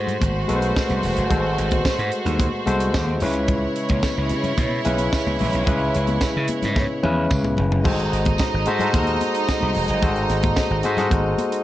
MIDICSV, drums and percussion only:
0, 0, Header, 1, 2, 480
1, 0, Start_track
1, 0, Tempo, 544959
1, 1149, Time_signature, 4, 2, 24, 8
1, 10248, End_track
2, 0, Start_track
2, 0, Title_t, "Drums"
2, 62, Note_on_c, 9, 64, 77
2, 75, Note_on_c, 9, 42, 40
2, 150, Note_off_c, 9, 64, 0
2, 163, Note_off_c, 9, 42, 0
2, 182, Note_on_c, 9, 62, 41
2, 182, Note_on_c, 9, 63, 81
2, 190, Note_on_c, 9, 36, 102
2, 193, Note_on_c, 9, 42, 82
2, 270, Note_off_c, 9, 62, 0
2, 270, Note_off_c, 9, 63, 0
2, 278, Note_off_c, 9, 36, 0
2, 281, Note_off_c, 9, 42, 0
2, 427, Note_on_c, 9, 63, 74
2, 431, Note_on_c, 9, 42, 66
2, 515, Note_off_c, 9, 63, 0
2, 519, Note_off_c, 9, 42, 0
2, 548, Note_on_c, 9, 42, 56
2, 636, Note_off_c, 9, 42, 0
2, 669, Note_on_c, 9, 62, 31
2, 674, Note_on_c, 9, 36, 103
2, 675, Note_on_c, 9, 38, 108
2, 676, Note_on_c, 9, 54, 95
2, 757, Note_off_c, 9, 62, 0
2, 762, Note_off_c, 9, 36, 0
2, 763, Note_off_c, 9, 38, 0
2, 764, Note_off_c, 9, 54, 0
2, 785, Note_on_c, 9, 63, 75
2, 791, Note_on_c, 9, 42, 32
2, 873, Note_off_c, 9, 63, 0
2, 879, Note_off_c, 9, 42, 0
2, 904, Note_on_c, 9, 62, 36
2, 904, Note_on_c, 9, 64, 69
2, 907, Note_on_c, 9, 46, 73
2, 992, Note_off_c, 9, 62, 0
2, 992, Note_off_c, 9, 64, 0
2, 995, Note_off_c, 9, 46, 0
2, 1028, Note_on_c, 9, 42, 48
2, 1116, Note_off_c, 9, 42, 0
2, 1146, Note_on_c, 9, 64, 84
2, 1150, Note_on_c, 9, 36, 108
2, 1153, Note_on_c, 9, 42, 71
2, 1234, Note_off_c, 9, 64, 0
2, 1238, Note_off_c, 9, 36, 0
2, 1241, Note_off_c, 9, 42, 0
2, 1395, Note_on_c, 9, 42, 59
2, 1483, Note_off_c, 9, 42, 0
2, 1507, Note_on_c, 9, 42, 50
2, 1510, Note_on_c, 9, 63, 81
2, 1514, Note_on_c, 9, 36, 92
2, 1595, Note_off_c, 9, 42, 0
2, 1598, Note_off_c, 9, 63, 0
2, 1602, Note_off_c, 9, 36, 0
2, 1622, Note_on_c, 9, 62, 38
2, 1628, Note_on_c, 9, 54, 88
2, 1630, Note_on_c, 9, 36, 102
2, 1635, Note_on_c, 9, 38, 115
2, 1710, Note_off_c, 9, 62, 0
2, 1716, Note_off_c, 9, 54, 0
2, 1718, Note_off_c, 9, 36, 0
2, 1723, Note_off_c, 9, 38, 0
2, 1755, Note_on_c, 9, 42, 31
2, 1843, Note_off_c, 9, 42, 0
2, 1864, Note_on_c, 9, 42, 61
2, 1952, Note_off_c, 9, 42, 0
2, 1985, Note_on_c, 9, 64, 78
2, 1993, Note_on_c, 9, 42, 46
2, 2073, Note_off_c, 9, 64, 0
2, 2081, Note_off_c, 9, 42, 0
2, 2102, Note_on_c, 9, 63, 93
2, 2110, Note_on_c, 9, 36, 108
2, 2113, Note_on_c, 9, 42, 78
2, 2190, Note_off_c, 9, 63, 0
2, 2198, Note_off_c, 9, 36, 0
2, 2201, Note_off_c, 9, 42, 0
2, 2347, Note_on_c, 9, 62, 35
2, 2347, Note_on_c, 9, 63, 73
2, 2352, Note_on_c, 9, 42, 68
2, 2435, Note_off_c, 9, 62, 0
2, 2435, Note_off_c, 9, 63, 0
2, 2440, Note_off_c, 9, 42, 0
2, 2469, Note_on_c, 9, 42, 58
2, 2557, Note_off_c, 9, 42, 0
2, 2591, Note_on_c, 9, 38, 109
2, 2593, Note_on_c, 9, 36, 110
2, 2594, Note_on_c, 9, 54, 104
2, 2679, Note_off_c, 9, 38, 0
2, 2681, Note_off_c, 9, 36, 0
2, 2682, Note_off_c, 9, 54, 0
2, 2710, Note_on_c, 9, 63, 69
2, 2798, Note_off_c, 9, 63, 0
2, 2821, Note_on_c, 9, 46, 75
2, 2829, Note_on_c, 9, 62, 32
2, 2829, Note_on_c, 9, 64, 76
2, 2909, Note_off_c, 9, 46, 0
2, 2917, Note_off_c, 9, 62, 0
2, 2917, Note_off_c, 9, 64, 0
2, 2939, Note_on_c, 9, 42, 47
2, 3027, Note_off_c, 9, 42, 0
2, 3065, Note_on_c, 9, 42, 68
2, 3068, Note_on_c, 9, 36, 108
2, 3069, Note_on_c, 9, 64, 79
2, 3153, Note_off_c, 9, 42, 0
2, 3157, Note_off_c, 9, 36, 0
2, 3157, Note_off_c, 9, 64, 0
2, 3309, Note_on_c, 9, 42, 63
2, 3397, Note_off_c, 9, 42, 0
2, 3424, Note_on_c, 9, 42, 54
2, 3429, Note_on_c, 9, 63, 80
2, 3433, Note_on_c, 9, 36, 97
2, 3512, Note_off_c, 9, 42, 0
2, 3517, Note_off_c, 9, 63, 0
2, 3521, Note_off_c, 9, 36, 0
2, 3546, Note_on_c, 9, 54, 94
2, 3549, Note_on_c, 9, 36, 104
2, 3549, Note_on_c, 9, 38, 108
2, 3634, Note_off_c, 9, 54, 0
2, 3637, Note_off_c, 9, 36, 0
2, 3637, Note_off_c, 9, 38, 0
2, 3782, Note_on_c, 9, 42, 66
2, 3790, Note_on_c, 9, 62, 46
2, 3870, Note_off_c, 9, 42, 0
2, 3878, Note_off_c, 9, 62, 0
2, 3907, Note_on_c, 9, 64, 81
2, 3910, Note_on_c, 9, 42, 44
2, 3995, Note_off_c, 9, 64, 0
2, 3998, Note_off_c, 9, 42, 0
2, 4028, Note_on_c, 9, 62, 41
2, 4028, Note_on_c, 9, 63, 84
2, 4032, Note_on_c, 9, 36, 114
2, 4033, Note_on_c, 9, 42, 79
2, 4117, Note_off_c, 9, 62, 0
2, 4117, Note_off_c, 9, 63, 0
2, 4120, Note_off_c, 9, 36, 0
2, 4121, Note_off_c, 9, 42, 0
2, 4270, Note_on_c, 9, 42, 72
2, 4282, Note_on_c, 9, 62, 31
2, 4282, Note_on_c, 9, 63, 75
2, 4359, Note_off_c, 9, 42, 0
2, 4370, Note_off_c, 9, 62, 0
2, 4370, Note_off_c, 9, 63, 0
2, 4390, Note_on_c, 9, 42, 56
2, 4478, Note_off_c, 9, 42, 0
2, 4516, Note_on_c, 9, 36, 115
2, 4516, Note_on_c, 9, 38, 119
2, 4518, Note_on_c, 9, 54, 95
2, 4523, Note_on_c, 9, 62, 32
2, 4604, Note_off_c, 9, 36, 0
2, 4604, Note_off_c, 9, 38, 0
2, 4606, Note_off_c, 9, 54, 0
2, 4611, Note_off_c, 9, 62, 0
2, 4639, Note_on_c, 9, 63, 74
2, 4727, Note_off_c, 9, 63, 0
2, 4747, Note_on_c, 9, 46, 75
2, 4758, Note_on_c, 9, 62, 36
2, 4758, Note_on_c, 9, 64, 73
2, 4835, Note_off_c, 9, 46, 0
2, 4846, Note_off_c, 9, 62, 0
2, 4846, Note_off_c, 9, 64, 0
2, 4869, Note_on_c, 9, 42, 48
2, 4957, Note_off_c, 9, 42, 0
2, 4994, Note_on_c, 9, 42, 73
2, 4994, Note_on_c, 9, 64, 82
2, 4995, Note_on_c, 9, 36, 116
2, 5082, Note_off_c, 9, 42, 0
2, 5082, Note_off_c, 9, 64, 0
2, 5083, Note_off_c, 9, 36, 0
2, 5237, Note_on_c, 9, 42, 59
2, 5325, Note_off_c, 9, 42, 0
2, 5349, Note_on_c, 9, 42, 51
2, 5358, Note_on_c, 9, 63, 75
2, 5437, Note_off_c, 9, 42, 0
2, 5446, Note_off_c, 9, 63, 0
2, 5469, Note_on_c, 9, 38, 100
2, 5471, Note_on_c, 9, 54, 101
2, 5473, Note_on_c, 9, 36, 93
2, 5476, Note_on_c, 9, 62, 40
2, 5557, Note_off_c, 9, 38, 0
2, 5559, Note_off_c, 9, 54, 0
2, 5561, Note_off_c, 9, 36, 0
2, 5564, Note_off_c, 9, 62, 0
2, 5705, Note_on_c, 9, 42, 70
2, 5715, Note_on_c, 9, 63, 66
2, 5793, Note_off_c, 9, 42, 0
2, 5803, Note_off_c, 9, 63, 0
2, 5832, Note_on_c, 9, 64, 80
2, 5837, Note_on_c, 9, 42, 45
2, 5838, Note_on_c, 9, 38, 39
2, 5920, Note_off_c, 9, 64, 0
2, 5925, Note_off_c, 9, 42, 0
2, 5926, Note_off_c, 9, 38, 0
2, 5953, Note_on_c, 9, 63, 78
2, 5955, Note_on_c, 9, 36, 100
2, 5959, Note_on_c, 9, 38, 55
2, 6041, Note_off_c, 9, 63, 0
2, 6043, Note_off_c, 9, 36, 0
2, 6047, Note_off_c, 9, 38, 0
2, 6194, Note_on_c, 9, 62, 32
2, 6194, Note_on_c, 9, 63, 76
2, 6197, Note_on_c, 9, 48, 74
2, 6282, Note_off_c, 9, 62, 0
2, 6282, Note_off_c, 9, 63, 0
2, 6285, Note_off_c, 9, 48, 0
2, 6434, Note_on_c, 9, 62, 32
2, 6435, Note_on_c, 9, 47, 87
2, 6438, Note_on_c, 9, 36, 108
2, 6439, Note_on_c, 9, 54, 94
2, 6523, Note_off_c, 9, 47, 0
2, 6523, Note_off_c, 9, 62, 0
2, 6526, Note_off_c, 9, 36, 0
2, 6527, Note_off_c, 9, 54, 0
2, 6548, Note_on_c, 9, 63, 73
2, 6557, Note_on_c, 9, 45, 76
2, 6636, Note_off_c, 9, 63, 0
2, 6645, Note_off_c, 9, 45, 0
2, 6666, Note_on_c, 9, 62, 34
2, 6666, Note_on_c, 9, 64, 79
2, 6676, Note_on_c, 9, 43, 97
2, 6754, Note_off_c, 9, 62, 0
2, 6754, Note_off_c, 9, 64, 0
2, 6764, Note_off_c, 9, 43, 0
2, 6799, Note_on_c, 9, 43, 96
2, 6887, Note_off_c, 9, 43, 0
2, 6908, Note_on_c, 9, 64, 82
2, 6916, Note_on_c, 9, 36, 127
2, 6918, Note_on_c, 9, 49, 103
2, 6997, Note_off_c, 9, 64, 0
2, 7004, Note_off_c, 9, 36, 0
2, 7006, Note_off_c, 9, 49, 0
2, 7036, Note_on_c, 9, 42, 34
2, 7124, Note_off_c, 9, 42, 0
2, 7163, Note_on_c, 9, 42, 60
2, 7251, Note_off_c, 9, 42, 0
2, 7269, Note_on_c, 9, 42, 51
2, 7271, Note_on_c, 9, 63, 90
2, 7278, Note_on_c, 9, 36, 94
2, 7357, Note_off_c, 9, 42, 0
2, 7359, Note_off_c, 9, 63, 0
2, 7366, Note_off_c, 9, 36, 0
2, 7383, Note_on_c, 9, 54, 108
2, 7394, Note_on_c, 9, 36, 110
2, 7397, Note_on_c, 9, 38, 115
2, 7471, Note_off_c, 9, 54, 0
2, 7482, Note_off_c, 9, 36, 0
2, 7485, Note_off_c, 9, 38, 0
2, 7625, Note_on_c, 9, 42, 67
2, 7634, Note_on_c, 9, 62, 42
2, 7713, Note_off_c, 9, 42, 0
2, 7722, Note_off_c, 9, 62, 0
2, 7745, Note_on_c, 9, 64, 88
2, 7754, Note_on_c, 9, 42, 44
2, 7833, Note_off_c, 9, 64, 0
2, 7842, Note_off_c, 9, 42, 0
2, 7867, Note_on_c, 9, 63, 81
2, 7873, Note_on_c, 9, 36, 121
2, 7874, Note_on_c, 9, 42, 81
2, 7955, Note_off_c, 9, 63, 0
2, 7961, Note_off_c, 9, 36, 0
2, 7962, Note_off_c, 9, 42, 0
2, 7989, Note_on_c, 9, 42, 38
2, 8077, Note_off_c, 9, 42, 0
2, 8112, Note_on_c, 9, 42, 66
2, 8113, Note_on_c, 9, 62, 37
2, 8113, Note_on_c, 9, 63, 84
2, 8200, Note_off_c, 9, 42, 0
2, 8201, Note_off_c, 9, 62, 0
2, 8201, Note_off_c, 9, 63, 0
2, 8233, Note_on_c, 9, 42, 59
2, 8322, Note_off_c, 9, 42, 0
2, 8355, Note_on_c, 9, 38, 112
2, 8355, Note_on_c, 9, 54, 102
2, 8356, Note_on_c, 9, 36, 101
2, 8443, Note_off_c, 9, 38, 0
2, 8443, Note_off_c, 9, 54, 0
2, 8444, Note_off_c, 9, 36, 0
2, 8461, Note_on_c, 9, 63, 72
2, 8549, Note_off_c, 9, 63, 0
2, 8584, Note_on_c, 9, 46, 79
2, 8587, Note_on_c, 9, 62, 38
2, 8587, Note_on_c, 9, 64, 75
2, 8672, Note_off_c, 9, 46, 0
2, 8675, Note_off_c, 9, 62, 0
2, 8675, Note_off_c, 9, 64, 0
2, 8702, Note_on_c, 9, 42, 55
2, 8791, Note_off_c, 9, 42, 0
2, 8826, Note_on_c, 9, 64, 79
2, 8828, Note_on_c, 9, 42, 76
2, 8830, Note_on_c, 9, 36, 121
2, 8914, Note_off_c, 9, 64, 0
2, 8916, Note_off_c, 9, 42, 0
2, 8918, Note_off_c, 9, 36, 0
2, 8948, Note_on_c, 9, 42, 35
2, 9036, Note_off_c, 9, 42, 0
2, 9068, Note_on_c, 9, 42, 62
2, 9068, Note_on_c, 9, 62, 42
2, 9156, Note_off_c, 9, 42, 0
2, 9156, Note_off_c, 9, 62, 0
2, 9185, Note_on_c, 9, 42, 52
2, 9190, Note_on_c, 9, 63, 90
2, 9193, Note_on_c, 9, 36, 99
2, 9273, Note_off_c, 9, 42, 0
2, 9278, Note_off_c, 9, 63, 0
2, 9281, Note_off_c, 9, 36, 0
2, 9305, Note_on_c, 9, 38, 113
2, 9305, Note_on_c, 9, 54, 94
2, 9308, Note_on_c, 9, 36, 102
2, 9393, Note_off_c, 9, 38, 0
2, 9393, Note_off_c, 9, 54, 0
2, 9396, Note_off_c, 9, 36, 0
2, 9540, Note_on_c, 9, 42, 68
2, 9549, Note_on_c, 9, 62, 47
2, 9628, Note_off_c, 9, 42, 0
2, 9638, Note_off_c, 9, 62, 0
2, 9662, Note_on_c, 9, 64, 85
2, 9670, Note_on_c, 9, 42, 47
2, 9671, Note_on_c, 9, 38, 42
2, 9750, Note_off_c, 9, 64, 0
2, 9758, Note_off_c, 9, 42, 0
2, 9759, Note_off_c, 9, 38, 0
2, 9779, Note_on_c, 9, 62, 39
2, 9779, Note_on_c, 9, 63, 91
2, 9788, Note_on_c, 9, 36, 107
2, 9789, Note_on_c, 9, 42, 80
2, 9868, Note_off_c, 9, 62, 0
2, 9868, Note_off_c, 9, 63, 0
2, 9876, Note_off_c, 9, 36, 0
2, 9877, Note_off_c, 9, 42, 0
2, 10024, Note_on_c, 9, 62, 36
2, 10024, Note_on_c, 9, 63, 79
2, 10028, Note_on_c, 9, 42, 73
2, 10112, Note_off_c, 9, 62, 0
2, 10112, Note_off_c, 9, 63, 0
2, 10116, Note_off_c, 9, 42, 0
2, 10149, Note_on_c, 9, 42, 62
2, 10237, Note_off_c, 9, 42, 0
2, 10248, End_track
0, 0, End_of_file